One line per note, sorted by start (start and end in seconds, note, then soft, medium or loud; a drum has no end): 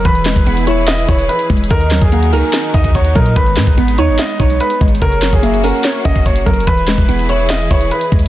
0.05 0.35 E1 loud
0.05 1.69 E3 medium
0.05 1.09 E3 medium
0.05 1.69 E4 medium
0.05 1.69 G#4 medium
0.05 0.64 B4 loud
0.05 1.69 B4 medium
0.05 kick loud
0.05 closed hi-hat medium
0.15 closed hi-hat medium
0.25 1.29 G#3 medium
0.25 snare medium
0.25 clap medium
0.25 closed hi-hat medium
0.36 0.46 E1 loud
0.36 kick loud
0.36 closed hi-hat medium
0.46 1.06 E1 loud
0.46 1.50 B3 medium
0.46 closed hi-hat medium
0.57 closed hi-hat medium
0.67 1.08 E4 loud
0.67 0.85 C#5 medium
0.67 1.26 E5 medium
0.67 closed hi-hat medium
0.88 1.06 D#5 medium
0.88 1.71 E5 medium
0.88 snare loud
0.88 clap medium
0.88 closed hi-hat medium
0.98 closed hi-hat medium
1.08 1.28 E1 loud
1.08 1.71 E4 medium
1.08 1.27 C#5 medium
1.08 kick loud
1.08 closed hi-hat medium
1.19 closed hi-hat medium
1.29 1.47 B4 medium
1.29 closed hi-hat medium
1.39 closed hi-hat medium
1.50 1.70 E1 loud
1.50 1.71 G#3 medium
1.50 kick loud
1.50 closed hi-hat soft
1.57 closed hi-hat medium
1.64 closed hi-hat medium
1.70 2.00 D#2 loud
1.70 2.74 D#3 medium
1.70 3.34 D#3 medium
1.70 4.98 D#4 medium
1.70 3.34 F#4 medium
1.70 3.34 A#4 medium
1.70 2.00 A#4 loud
1.70 2.10 D#5 loud
1.70 kick loud
1.70 closed hi-hat medium
1.81 closed hi-hat medium
1.91 2.95 F#3 medium
1.91 snare loud
1.91 clap medium
1.91 closed hi-hat medium
2.01 2.34 D#2 loud
2.01 2.31 G#4 medium
2.01 kick loud
2.01 closed hi-hat medium
2.12 3.16 A#3 medium
2.12 2.32 F#5 medium
2.12 closed hi-hat medium
2.23 closed hi-hat medium
2.33 2.43 C#2 loud
2.33 2.73 D#4 loud
2.33 2.72 A#4 medium
2.33 2.91 G#5 medium
2.33 open hi-hat medium
2.53 3.36 D#5 medium
2.53 snare loud
2.53 clap medium
2.53 closed hi-hat medium
2.64 closed hi-hat medium
2.74 3.14 D#2 loud
2.74 3.36 D#4 medium
2.74 2.93 D#5 medium
2.74 kick loud
2.74 closed hi-hat medium
2.84 kick loud
2.84 closed hi-hat medium
2.95 3.13 C#5 medium
2.95 3.15 F#5 medium
2.95 kick medium
2.95 closed hi-hat medium
3.04 closed hi-hat medium
3.15 3.35 A#2 loud
3.15 3.36 F#3 medium
3.15 3.34 A#4 medium
3.15 3.35 D#5 medium
3.15 kick loud
3.15 closed hi-hat soft
3.26 closed hi-hat medium
3.36 3.58 G#1 loud
3.36 4.40 D#3 medium
3.36 5.00 G#3 medium
3.36 5.00 B3 medium
3.36 3.95 B4 medium
3.36 kick loud
3.36 closed hi-hat medium
3.46 closed hi-hat medium
3.57 3.67 G#2 loud
3.57 4.60 G#3 medium
3.57 snare loud
3.57 clap medium
3.57 closed hi-hat medium
3.67 3.77 G#1 loud
3.67 kick loud
3.67 closed hi-hat medium
3.77 4.00 G#1 loud
3.77 4.81 B3 medium
3.77 closed hi-hat medium
3.88 closed hi-hat medium
3.98 4.10 D#2 loud
3.98 4.39 D#4 loud
3.98 4.17 C#5 medium
3.98 4.57 D#5 medium
3.98 closed hi-hat medium
4.09 4.18 G#1 loud
4.19 4.37 D#5 medium
4.19 5.02 D#5 medium
4.19 snare loud
4.19 clap medium
4.19 closed hi-hat medium
4.29 closed hi-hat medium
4.40 4.60 B1 loud
4.40 5.02 D#4 medium
4.40 4.58 C#5 medium
4.40 kick loud
4.40 closed hi-hat medium
4.50 closed hi-hat medium
4.60 4.79 B4 medium
4.60 closed hi-hat medium
4.70 closed hi-hat medium
4.81 5.01 G#1 loud
4.81 5.02 G#3 medium
4.81 kick loud
4.81 closed hi-hat soft
4.88 closed hi-hat medium
4.95 closed hi-hat medium
5.01 5.31 F#1 loud
5.01 6.05 C#3 medium
5.01 6.66 A#3 medium
5.01 6.66 C#4 medium
5.01 6.66 F#4 medium
5.01 5.31 A#4 loud
5.01 5.40 C#5 loud
5.01 kick loud
5.01 closed hi-hat medium
5.12 closed hi-hat medium
5.22 6.26 F#3 medium
5.22 snare loud
5.22 clap medium
5.22 closed hi-hat medium
5.32 5.72 F#1 loud
5.32 5.62 G#4 medium
5.32 kick medium
5.32 closed hi-hat medium
5.43 6.46 A#3 medium
5.43 5.63 E5 medium
5.43 closed hi-hat medium
5.54 closed hi-hat medium
5.64 6.04 C#4 medium
5.64 6.03 A#4 medium
5.64 5.84 F#5 medium
5.64 open hi-hat medium
5.84 6.67 C#5 medium
5.84 snare loud
5.84 clap medium
5.84 closed hi-hat medium
5.95 closed hi-hat medium
6.05 6.45 F#1 loud
6.05 6.67 C#4 medium
6.05 6.24 D#5 medium
6.05 kick loud
6.05 closed hi-hat medium
6.15 kick loud
6.15 closed hi-hat medium
6.26 6.44 C#5 medium
6.26 kick medium
6.26 closed hi-hat medium
6.36 closed hi-hat medium
6.46 6.66 F#1 loud
6.46 6.67 F#3 medium
6.46 6.65 A#4 medium
6.46 kick loud
6.46 closed hi-hat soft
6.53 closed hi-hat medium
6.60 closed hi-hat medium
6.67 6.97 E1 loud
6.67 8.28 E3 medium
6.67 7.71 E3 medium
6.67 8.28 E4 medium
6.67 8.28 G#4 medium
6.67 8.28 B4 medium
6.67 7.26 B4 loud
6.67 kick loud
6.67 closed hi-hat medium
6.77 closed hi-hat medium
6.88 7.91 G#3 medium
6.88 snare loud
6.88 clap medium
6.88 closed hi-hat medium
6.98 7.08 E1 loud
6.98 kick loud
6.98 closed hi-hat medium
7.09 7.68 E1 loud
7.09 8.12 B3 medium
7.09 closed hi-hat medium
7.19 closed hi-hat medium
7.29 7.70 E4 loud
7.29 7.48 C#5 medium
7.29 7.88 E5 medium
7.29 closed hi-hat medium
7.50 7.68 D#5 medium
7.50 8.28 E5 medium
7.50 snare loud
7.50 clap medium
7.50 closed hi-hat medium
7.60 closed hi-hat soft
7.71 7.91 E1 loud
7.71 8.28 E4 medium
7.71 7.89 C#5 medium
7.71 kick loud
7.71 closed hi-hat medium
7.81 closed hi-hat medium
7.91 8.10 B4 medium
7.91 closed hi-hat medium
8.01 closed hi-hat medium
8.12 8.28 D#2 loud
8.12 8.28 G#3 medium
8.12 kick loud
8.12 closed hi-hat soft
8.19 closed hi-hat medium